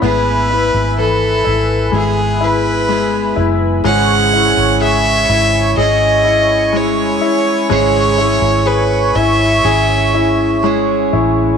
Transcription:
<<
  \new Staff \with { instrumentName = "Analog synth pad" } { \time 4/4 \key cis \minor \tempo 4 = 62 << { <b' e'' b''>1 | <e' cis'' cis'''>1~ | <e' cis'' cis'''>1 | } \\ { gis''1~ | gis''1~ | gis''1 | } >> }
  \new Staff \with { instrumentName = "Violin" } { \time 4/4 \key cis \minor b'4 a'4 gis'8 b'4 r8 | fis''4 e''4 dis''4 cis''4 | cis''4 b'8 e''4. r4 | }
  \new Staff \with { instrumentName = "Grand piano" } { \time 4/4 \key cis \minor b8 e'8 e8 e'8 gis8 e'8 gis8 e'8 | gis8 e'8 gis'8 e'8 gis'8 e'8 gis8 e'8 | gis8 e'8 gis'8 e'8 gis'8 e'8 gis8 e'8 | }
  \new Staff \with { instrumentName = "Steel-string acoustic guitar" } { \time 4/4 \key cis \minor <gis b e' gis'>8 <b e'>4. <gis b e' gis'>4 <gis b e' gis'>4 | <gis, cis gis cis' e' gis'>2 <gis cis' e' gis'>4 <gis cis' e' gis'>4 | <gis, cis gis cis' e' gis'>8 <gis cis' e' gis'>4. <gis cis' e' gis'>4 <gis cis' e' gis'>4 | }
  \new Staff \with { instrumentName = "Fingered electric bass" } { \clef bass \time 4/4 \key cis \minor gis,,8. gis,,8. gis,,8 gis,,4. fis,,8 | gis,,8. gis,,8. gis,,8 gis,,4. r8 | gis,,8. gis,,8. gis,,8 gis,,4. a,,8 | }
>>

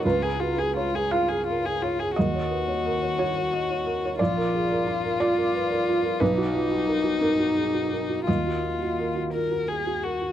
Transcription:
<<
  \new Staff \with { instrumentName = "Felt piano" } { \time 6/8 \key ees \minor \tempo 4. = 59 << { ces''4. f''4. | ees''4. des''4. | d''4. d''4. | b'4. ais'4. |
ees''4. r4. | } \\ { des,16 aes'16 ges'16 aes'16 des''16 aes'16 f'16 aes'16 bes'16 aes'16 des''16 aes'16 | ees,16 des''16 ces''16 des''16 bes'16 des''16 ges'16 des''16 ees''16 des''16 bes'16 des''16 | bes,,16 bes'16 aes'16 bes'16 f'16 bes'16 f'16 bes'16 ces''16 bes'16 f'16 bes'16 | b,,16 fis'16 f'16 fis'16 ais'16 fis'16 dis'16 fis'16 aes'16 fis'16 ais'16 fis'16 |
ees,16 ges'16 f'16 ges'16 bes'16 ges'16 f'16 ges'16 aes'16 ges'16 bes'16 ges'16 | } >> }
  \new Staff \with { instrumentName = "Violin" } { \time 6/8 \key ees \minor f'16 aes'16 f'16 aes'16 f'16 aes'16 f'16 aes'16 f'16 aes'16 f'16 aes'16 | ges'2. | f'2. | dis'2. |
f'4. bes'8 aes'8 ges'8 | }
>>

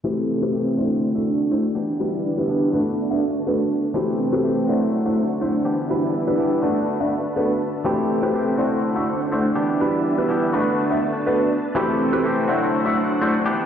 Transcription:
<<
  \new Staff \with { instrumentName = "String machine" } { \time 4/4 \key a \dorian \tempo 4 = 123 << { <c' a' g''>4. <d' fis''>2 <b' e''>8~ | <b' e''>4. <b' a''>2~ <b' a''>8 | <c' a' g''>4. <d' c'' fis''>2 <b' e''>8~ | <b' e''>4. <b' a''>2~ <b' a''>8 |
<c' a' g''>4. <d' c'' fis''>2 <b' e''>8~ | <b' e''>4. <d' a''>2~ <d' a''>8 | <c' a' g''>4. <d' c'' fis''>2 <b' e''>8 | } \\ { r2. r8 d'8~ | d'1 | r1 | r1 |
r1 | r1 | r1 | } >> }
  \new Staff \with { instrumentName = "Grand piano" } { \time 4/4 \key a \dorian <a c' e' g' b'>8. <a c' e' g' b'>8. <a d' e' fis' c''>8. <a d' e' fis' e''>16 r8 <a d' e' fis' c''>16 r8. | <g d' e' b'>8. <g d' e' b'>8. <a b d' fis' b'>8. <a b d' fis' e''>16 r8 <a b d' fis' b'>16 r8. | <a c' e' g' b'>8. <a c' e' g' b'>8. <a d' e' fis' c''>8. <a d' e' fis' e''>16 r8 <a d' e' fis' c''>16 r8. | <g d' e' b'>8. <g d' e' b'>8. <a b d' fis' b'>8. <a b d' fis' e''>16 r8 <a b d' fis' b'>16 r8. |
<a c' e' g' b'>8. <a c' e' g' b'>8. <a d' e' fis' c''>8. <a d' e' fis' e''>16 r8 <a d' e' fis' c''>16 r8. | <g d' e' b'>8. <g d' e' b'>8. <a b d' fis' b'>8. <a b d' fis' e''>16 r8 <a b d' fis' b'>16 r8. | <a c' e' g' b'>8. <a c' e' g' b'>8. <a d' e' fis' c''>8. <a d' e' fis' e''>16 r8 <a d' e' fis' c''>16 r8. | }
  \new Staff \with { instrumentName = "Clean electric guitar" } { \time 4/4 \key a \dorian <e a c' g'>4 <e a c' g'>8 <a c' fis'>2 <e b d' g'>8~ | <e b d' g'>4 <e b d' g'>8 <a d' fis'>2~ <a d' fis'>8 | <e a c' g'>4 <e a c' g'>8 <fis a c' fis'>2 <e b d' g'>8~ | <e b d' g'>4 <e b d' g'>8 <a d' fis'>2~ <a d' fis'>8 |
<e a c' g'>4 <e a c' g'>8 <a c' fis'>2 <e b d' g'>8~ | <e b d' g'>4 <e b d' g'>8 <a d' fis'>2~ <a d' fis'>8 | <e a c' g'>4 <e a c' g'>8 <fis a c' fis'>2 <e b d' g'>8 | }
>>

